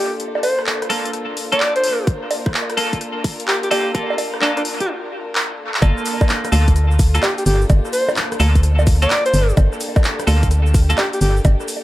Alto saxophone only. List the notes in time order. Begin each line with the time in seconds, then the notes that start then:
Already playing: G4
0.43 C5
1.52 D5
1.76 C5
3.48 G4
3.63 G4
3.71 G4
4.41 D4
4.57 D4
4.80 G4
7.22 G4
7.38 G4
7.46 G4
7.93 C5
9.02 D5
9.26 C5
10.98 G4
11.13 G4
11.21 G4